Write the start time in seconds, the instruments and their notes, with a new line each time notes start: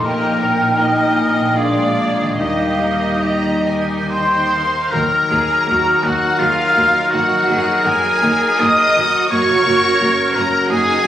Already playing: harp A#2 A#3 D#4
0.00 harp A#4, viola section A#4, violin section D#5
0.04 double bass section A#1, cello section A#2, violin section A#3 G4, french horn section A#3 D#4, clarinet D#4, oboe A#4, flute G5
0.41 violin section D#4 A#4
0.78 violin section A#3 G4 D#5, viola section D#5
1.15 violin section D#4 A#4, flute G#5
1.37 harp A#2, flute G5
1.42 harp A#3
1.47 harp D4
1.51 clarinet D4, harp G#4, violin section G#4 D5
1.56 french horn section G#3 D4, violin section F4, oboe G#4, viola section D5, flute F5
1.96 violin section D4 F4 A#4
2.20 harp D#3
2.25 harp A#3
2.29 harp D#4
2.34 french horn section G3 D#4, harp G4, violin section G4
2.38 double bass section D#2, cello section D#3, violin section A#3 D#5, clarinet D#4, oboe G4, viola section D#5, flute F5
2.78 violin section D#4 A#4
3.22 violin section A#3 G4 A#5, clarinet D#4, oboe G4, flute D#5
3.66 violin section D#4 A#4 G#5
4.09 violin section A#3 G4 C5 G5 C6, oboe C5, flute C6
4.52 violin section D#4 A#4 F5
4.91 double bass section D#2, harp D#3, french horn section F#3 D#4, viola section F#3 A#3, oboe A#4, trumpet A#4, violin section A#4 A#5, cello section A#4, flute A#5
5.11 harp A#3
5.29 double bass section D#2, viola section F#3 A#3, harp D#4, cello section G#4
5.49 harp F#4
5.67 double bass section D#2, viola section F#3 A#3, cello section F#4, harp A#4
5.86 harp D#5
6.02 double bass section D#2, viola section F#3 A#3, violin section F#4 F#5, oboe F#4, flute F#5, harp F#5
6.22 harp A#5
6.38 double bass section D#2, viola section F#3 A#3, violin section F4 F5, oboe F4, cello section G#4, flute F5, harp F#5
6.58 harp A#4
6.76 double bass section D#2, viola section F#3 A#3, harp F#4, cello section A#4
6.95 harp D#4
7.11 harp F#2, double bass section F#2, viola section D#3 A#3, oboe F#4, violin section F#4 F#5, cello section F#4, flute F#5
7.30 harp F#3
7.48 double bass section F#2, viola section D#3 A#3, harp A#3, cello section G#4
7.66 harp D#4
7.83 double bass section F#2, viola section D#3 A#3, harp F#4, violin section G#4 G#5, oboe G#4, cello section A#4, flute G#5
8.02 harp A#4
8.21 double bass section F#2, viola section D#3 A#3, cello section A#4, harp D#5
8.41 harp F#5
8.59 double bass section F#2, viola section D#3 A#3, cello section G#4, harp D#5, violin section D#5 D#6, oboe D#5, flute D#6
8.78 harp F#4
8.95 double bass section F#2, viola section D#3 A#3, harp D#4, cello section F#4
9.14 harp A#3
9.30 double bass section F#2, harp F#2, viola section F#3 A#3, french horn section F#3 F#4, trumpet A#4, violin section C#5 C#6, oboe C#5, flute C#6
9.48 harp C#3
9.65 double bass section F#2, viola section F#3 A#3, harp A#3
9.82 harp C#4
9.99 double bass section F#2, viola section F#3 A#3, harp F#4, cello section A#4
10.17 harp A#4
10.34 double bass section F#2, viola section F#3 A#3, cello section C#4, oboe A#4, violin section A#4 A#5, harp C#5, flute A#5
10.51 harp F#5
10.69 double bass section F#2, viola section F#3 A#3, cello section D#4, violin section G#4 G#5, oboe G#4, harp C#5, flute G#5
10.86 harp F#4
11.03 double bass section F#2, harp C#4